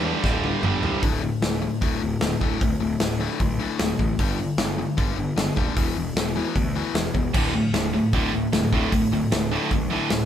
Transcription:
Already playing: E2
0.03 G2 D3 G3
0.23 D1 G2 D3 G3, kick, snare
0.44 high tom
0.62 G1 G2 D3 G3, mid tom
0.82 C2 G2 D3 G3, floor tom
1.02 D1 D2 A2 D3, kick, open hi-hat
1.23 D2 A2
1.42 D1 D2 A2, snare, open hi-hat
1.62 D2 A2
1.81 D1 D2 A2 D3, kick, open hi-hat
2.01 D1 D2 A2
2.21 D1 D2 A2, snare, open hi-hat
2.41 D1 D2 A2 D3, kick
2.61 D1 D2 A2, kick, open hi-hat
2.80 D1 D2 A2
3.00 D1 D2 A2, snare, open hi-hat
3.20 D2 A2 D3
3.40 B1 D2 A2, kick, open hi-hat
3.59 D2 A2 D3
3.79 D1 D2 A2, snare, open hi-hat
3.99 A1 D2 A2, kick
4.19 G1 G2 D3 G3, kick, open hi-hat
4.39 G2 D3
4.58 G1 G2 D3, snare, open hi-hat
4.78 G2 D3
4.97 G1 G2 D3 G3, kick, open hi-hat
5.17 G1 G2 D3
5.36 G1 G2 D3, snare, open hi-hat
5.56 D#1 G2 D3 G3, kick
5.77 E1 E2 B2 E3, kick, open hi-hat
5.96 E1 E2 B2
6.15 E1 E2 B2, snare, open hi-hat
6.36 E2 B2 E3
6.56 D2 E2 B2, kick, open hi-hat
6.75 E2 B2 E3
6.94 E1 E2 B2, snare, open hi-hat
7.14 E1 E2 B2, kick
7.34 D1 D2 A2 D3, kick, crash
7.54 D2 A2
7.73 D1 D2 A2, snare, open hi-hat
7.94 D2 A2
8.13 D1 D2 A2 D3, kick, open hi-hat
8.33 D1 D2 A2
8.53 D1 D2 A2, snare, open hi-hat
8.72 D1 D2 A2 D3, kick
8.92 D1 D2 A2, kick, open hi-hat
9.11 D1 D2 A2
9.31 D1 D2 A2, snare, open hi-hat
9.52 D2 A2 D3
9.71 B1 D2 A2, kick, open hi-hat
9.91 D2 A2 D3
10.10 D1 D2 A2, snare, open hi-hat

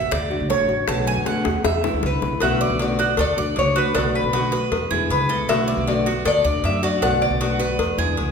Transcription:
Already playing: A1 A3 B3 F#4 E5
0.11 D2 D5, muted nylon-string guitar stroke, high bongo
0.30 A3 D4 F#4, high bongo
0.40 C#2
0.49 D3 A3 D4 F#4 C#5, high bongo, low bongo
0.60 A1
0.68 A3 D4 F#4, high bongo
0.87 B1 B2 D3 A3 B3 F#4 A5, high bongo
1.07 G#5, high bongo
1.17 F#2
1.26 B2 D3 A3 B3 F#4 F#5, high bongo
1.45 D#2 A3 B3 F#4, high bongo
1.64 E2 E5, muted nylon-string guitar stroke, high bongo
1.84 D3 G#3 B3 E4, low bongo
1.94 D2
2.03 C#2 D3 G#3 B3 E4 B4, low bongo
2.22 B1 G#3 B3 E4, low bongo
2.40 B1 B2 D3 A3 B3 F#4 E5, cowbell
2.61 D5
2.70 B1
2.79 B2 D3 A3 B3 F#4 D5, cowbell
2.99 A3 B3 F#4, cowbell
3.17 D2 A4 D5, muted nylon-string guitar stroke, cowbell
3.37 D2 A3 D4 F#4 D5
3.56 C#2 D3 A3 D4 F#4 C#5, cowbell
3.76 A3 D4 F#4 B4, cowbell
3.95 B1 B2 D3 A3 B3 D4 F#4 A4, cowbell
4.15 B4
4.24 B1
4.33 B2 D3 A3 B3 F#4, cowbell
4.52 A3 B3 F#4 B4, cowbell
4.71 E2, muted nylon-string guitar stroke, cowbell
4.91 E2 D3 G#3 B3 E4 G#4
5.10 C#2 D3 G#3 B3 B4, cowbell
5.29 G#3 B3 E4 A4, cowbell
5.48 B1 B2 D3 A3 B3 F#4 E5, cowbell
5.68 D5
5.77 B1
5.86 B2 D3 A3 B3 F#4 D5, cowbell
6.06 A3 B3 F#4, cowbell
6.25 D2 A4 D5, muted nylon-string guitar stroke, cowbell
6.44 D2 A3 D4 F#4 D5
6.63 F#2 D3 A3 D4 F#4 E5, cowbell
6.82 A3 D4 F#4 D5, cowbell
7.01 B1 B2 D3 A3 B3 D4 F#4 F#5, cowbell
7.22 D5
7.31 B1
7.40 B2 D3 A3 B3 F#4, cowbell
7.59 A3 B3 F#4 B4, cowbell
7.79 E2, muted nylon-string guitar stroke, cowbell
7.98 E2 D3 G#3 B3 E4 G#4
8.17 C#2 D3 G#3 B3 E4, cowbell

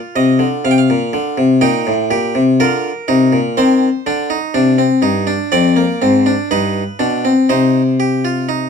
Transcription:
Already playing: F4
0.16 C3 D#5
0.39 D3
0.65 C3 F5
0.71 G5
0.78 F5
0.90 A#2
1.13 D3
1.38 C3
1.61 A#2 D#4 G5
1.87 A2
2.11 A#2 G4
2.35 C3
2.60 D3 F4 A#4
3.08 C3 D#4
3.33 A#2
3.57 D#3 C4 C5
4.06 D3 D4
4.30 D#4
4.54 C3 D4
4.78 C4
5.02 G2 D#4
5.27 D4
5.52 F2 C4 D5
5.76 A#3
6.02 G#2 C4
6.26 D4
6.51 G2 D#4 B4
6.99 B2 D4
7.25 C4
7.49 C3 D#4 C5
8.00 G4
8.25 F4
8.49 D#4

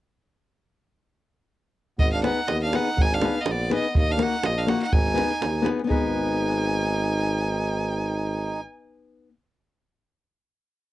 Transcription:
1.99 G#1 B3 D#5, davul low
2.13 D4 F5
2.23 B3 D#4 G#4 B4 F#5, davul high
2.48 D#2 B3 D#5, davul high
2.63 D4 F5
2.73 B3 D#4 G#4 B4 F#5, davul high
2.87 davul high
2.97 G#1 D#4, davul low
3.02 G#5
3.12 D4 F5
3.22 B3 D#4 G#4 B4, davul high
3.36 B3
3.41 D#5
3.46 A#1 B3, davul high
3.51 D5
3.70 B3 D#4 G#4 B4, davul high
3.74 B3 D#5
3.85 davul high
3.95 D#2 A#3 D#5, davul low
4.10 D4 F5
4.17 A#3 D#4 F#4 A#4, davul high
4.23 F#5
4.43 A#1 A#3 D#5, davul high
4.56 D4 F5
4.66 A#3 D#4 F#4 A#4 F#5, davul high
4.80 D#4 F#5, davul high
4.92 G#1 D#4 G#5, davul low
5.07 davul high
5.14 B3 D#4 G#4 B4, davul high
5.31 davul high
5.41 D#2, davul high
5.55 davul high
5.62 B3 D#4 G#4 B4
5.66 davul high
5.80 davul high
5.84 B3 D#4
5.89 G#1 D#4 G#4 B4 G#5, davul low

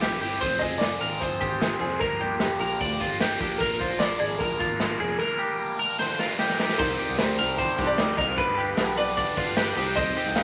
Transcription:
Already playing: A#1 E5
0.01 G3 C4 E4 G4, snare, closed hi-hat
0.20 G1 C4 E4 G4, open hi-hat
0.39 F1 F3 C4 F4 G#4 C5, kick, closed hi-hat, tambourine
0.59 F4 G#4 D#5, kick, closed hi-hat, tambourine
0.63 C4
0.71 F1
0.78 F3 C4 D5, snare, closed hi-hat, tambourine
0.83 F4 G#4
1.01 G#1 C4 F4 G#4 A#4, closed hi-hat, tambourine
1.19 G1 F3 C4 F4 C5, kick, closed hi-hat
1.23 G#4
1.40 G#1 C4 F4 G4 G#4, kick, closed hi-hat, tambourine
1.59 F3 C4 F4 G#4, snare, closed hi-hat, tambourine
1.79 F1 F4 G#4 C5, closed hi-hat, tambourine
1.84 C4
1.99 G1 G2 D3 F3 A#3 D4 G4 A#4, kick, closed hi-hat, tambourine
2.20 G1 F3 A#3 D4 G4, closed hi-hat, tambourine
2.39 F1 F3 A#3 D4 G4, snare, closed hi-hat, tambourine
2.43 G4
2.60 A#1 A#3 D4 G4 A#4, closed hi-hat, tambourine
2.64 F3
2.80 D2 G2 D3 F3 A#3 D4 G4 D5, kick, closed hi-hat
3.00 G1 F3 A#3 D4 F4 G4, kick, closed hi-hat, tambourine
3.20 F3 A#3 D4 G4, snare, closed hi-hat, tambourine
3.40 A#1 F3 A#3 D4 G4 A#4, kick, closed hi-hat, tambourine
3.58 A#2 D3 F3 A#3 A#4, kick, closed hi-hat, tambourine
3.62 D4 A#4
3.78 D4 F4 A#4 C5, kick, closed hi-hat, tambourine
3.82 F3 A#3
3.90 A#1
3.99 F3 A#3 D4 A#4 D5, snare, closed hi-hat, tambourine
4.19 G#1 F3 A#3 D4 G#4 A#4 D5, closed hi-hat
4.38 A#1 A#2 D3 F3 A#3 D4 A#4, kick, closed hi-hat, tambourine
4.59 G#1 F3 A#3 D4 F4 A#4, kick, closed hi-hat, tambourine
4.79 F3 A#3 D4 A#4, snare, closed hi-hat, tambourine
4.99 F1 F3 A#3 D4 G#4 A#4, closed hi-hat, tambourine
5.18 G2 D3 G3 A#3 D4 A#4
5.39 G3 A#3 D4 G4 A#4
5.58 G3 A#3 D4 A#4
5.79 G3 A#3 D4 A#4
5.99 G2 D3 G3 A#3 D4 A#4 C5, snare
6.18 G3 A#3 D4 F4 A#4, snare
6.38 G3 A#3 D4 G4 A#4, snare
6.50 snare
6.58 G3 A#3 D4 G4 A#4, snare
6.69 snare
6.77 C2 C3 D#3 G3 C4 D4 D#4 G4 A#4 C5 D5, kick, crash, tambourine
6.98 G3 C4 D4 D#4 G4 C5 D5, ride, tambourine
7.09 C2
7.17 D2 G3 C4 D4 D#4 G4 C5 D5, snare, ride, tambourine
7.37 C2 G3 C4 D4 D#4 G4 A#4 C5 D5, ride, tambourine
7.57 C3 D#3 G3 C4 D4 D#4 G4 C5 D5, kick, ride, tambourine
7.77 C2 G3 C4 D4 D#4 G4 C5 D5, kick, ride, tambourine
7.87 D5
7.98 D2 G3 C4 D4 D#4 G4 C5 D#5, snare, ride, tambourine
8.17 C2 G3 C4 D4 D#4 G4 A#4 C5 D#5 F5, kick, open hi-hat, ride, tambourine
8.30 C5
8.37 G1 G2 D3 G3 B3 D4 G4 B4 D5, kick, hi-hat pedal, ride, tambourine
8.57 G3 B3 D4 G4 B4 F5, ride, tambourine
8.76 B1 G3 B3 D4 G4 B4 F5, snare, ride, tambourine
8.97 B1 G3 B3 D4 G4 B4 D5 F5, ride, tambourine
9.17 G2 D3 G3 B3 D4 G4 B4 D5, kick, ride
9.36 G1 G3 B3 D4 F4 G4 B4 D5, kick, ride, tambourine
9.56 G3 B3 D4 G4 B4 D5, snare, ride, tambourine
9.77 C2 G3 C4 D4 D#4 G4 C5 D5, open hi-hat, ride, tambourine
9.96 C3 D#3 G3 C4 D4 G4 C5 D#5, kick, hi-hat pedal, ride, tambourine
10.15 G3 C4 D4 D#4 G4 C5 D5, ride, tambourine
10.26 C2 G5
10.35 C2 G3 C4 D4 D#4 G4 C5 F5, snare, ride, tambourine

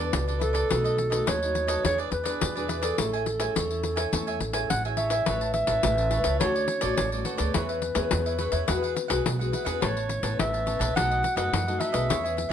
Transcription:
Already playing: E3 B3 A4 B4 D5
0.00 D4 A4
0.13 C#2 B2, pandeiro
0.27 B3 D4 A4 B4 D5, pandeiro
0.39 E4 A4 B4 D5, pandeiro
0.53 A4 B4 D5, pandeiro
0.68 B1 B2 F#3 A3 D#4 A4 B4 D#5, pandeiro
0.84 A4 B4 D#5, pandeiro
0.97 muted cavaquinho stroke, pandeiro
1.10 F#3 A3 D#4 A4 B4 D#5, pandeiro
1.26 D#2 F#2 D#4 A4 B4 C#5 D#5, pandeiro
1.43 F#3 A3 D#4, pandeiro
1.55 pandeiro
1.67 A4 B4 D#5, pandeiro
1.83 E2 E3 B3 D4 E4 G#4 B4 C#5 D5, pandeiro
1.98 G#4 B4 D5, pandeiro
2.11 E2 B4, muted cavaquinho stroke, pandeiro
2.24 B3 D4 G#4 B4 D5, pandeiro
2.41 E2 B2, pandeiro
2.55 B3 D4 G#4 B4 D5, pandeiro
2.68 E4 G#4 B4 D5, pandeiro
2.82 G#4 A4 B4 D5, pandeiro
2.98 A1 A3 C#4 E4 G#4 A4 E5, pandeiro
3.13 C#5 E5 G#5, pandeiro
3.26 muted cavaquinho stroke, pandeiro
3.39 C#4 E4 G#4 C#5 E5 G#5, pandeiro
3.55 E2 E3 A4 C#5 E5 G#5, pandeiro
3.70 C#4 E4, pandeiro
3.83 pandeiro
3.96 C#5 E5 G#5, pandeiro
4.12 E2 A3 C#4 E4 A4 C#5 E5 G#5, pandeiro
4.27 C#5 E5 G#5, pandeiro
4.40 A1, muted cavaquinho stroke, pandeiro
4.53 C#4 E4 G#4 C#5 E5 G#5, pandeiro
4.70 A1 E3 F#5, pandeiro
4.85 C#4 E4 G#4 C#5 E5 G#5, pandeiro
4.97 A4 C#5 E5 G#5, pandeiro
5.10 C#5 E5 G#5, pandeiro
5.26 A1 A3 C#4 E4 A4 B4 C#5 A5, pandeiro
5.41 B4 C#5 A5, pandeiro
5.54 E5, muted cavaquinho stroke, pandeiro
5.67 A1 C#4 E4 B4 C#5 A5, pandeiro
5.83 A1 E3, pandeiro
5.98 B4 C#5 A5, pandeiro
6.11 C#4 E4 A4 B4 C#5 A5, pandeiro
6.24 C#2 B4 C#5 A5, pandeiro
6.40 D2 D3 A3 C#4 F#4 A4 C#5 D5, pandeiro
6.55 A4 C#5 D5, pandeiro
6.68 muted cavaquinho stroke, pandeiro
6.81 A1 A3 C#4 F#4 A4 C#5 D5, pandeiro
6.97 A1 A2 C#5, pandeiro
7.12 A3 C#4 F#4 A4 C#5 D5, pandeiro
7.25 F#4 A4 B4 C#5 D5, pandeiro
7.37 D2 B3 C#4 G#4 A4 C#5 D5, pandeiro
7.54 E2 E3 E4 B4 C#5 E5, pandeiro
7.69 B4 C#5 E5, pandeiro
7.82 muted cavaquinho stroke, pandeiro
7.95 E2 B3 C#4 G#4 B4 C#5 E5, pandeiro
8.11 E2, pandeiro
8.26 B4 C#5 E5, pandeiro
8.39 B3 C#4 E4 G#4 B4 C#5 E5, pandeiro
8.52 E2 B4 C#5 E5, pandeiro
8.68 E2 E3 G#3 B3 E4 F#4 G#4 B4 F#5, pandeiro
8.83 G#4 B4 F#5, pandeiro
8.96 muted cavaquinho stroke, pandeiro
9.08 B1 G#3 B3 F#4 G#4 B4 F#5, pandeiro
9.25 B1 B2, pandeiro
9.39 G#3 B3 F#4 G#4 B4 F#5, pandeiro
9.52 E4 G#4 B4 F#5, pandeiro
9.65 E2 E3 B3 C#4 G#4 B4 F#5, pandeiro
9.81 A1 A2 A4 B4 C#5 A5, pandeiro
9.97 B4 C#5 A5, pandeiro
10.09 muted cavaquinho stroke, pandeiro
10.22 A1 E3 B3 C#4 B4 C#5 A5, pandeiro
10.39 A1 E3 E5, pandeiro
10.53 B4 C#5 A5, pandeiro
10.66 E3 B3 C#4 A4 B4 C#5 A5, pandeiro
10.79 A#1 B4 C#5 A5, pandeiro
10.95 B1 B2 F#3 A3 D#4 A4 B4 D#5 F#5, pandeiro
11.10 A4 B4 D#5, pandeiro
11.23 muted cavaquinho stroke, pandeiro
11.36 F#2 F#3 A3 D#4 A4 B4 D#5 F#5, pandeiro
11.53 F#2, pandeiro
11.67 F#3 A3 D#4 A4 B4 D#5, pandeiro
11.80 D#4 A4 B4 D#5 E5, pandeiro
11.92 B1 B3 C#4 G#4 A4 B4 D#5, pandeiro
12.09 E2 E3 E4 G#4 C#5 E5, pandeiro
12.23 G#4 C#5 E5, pandeiro
12.37 muted cavaquinho stroke, pandeiro
12.49 C#5 E5

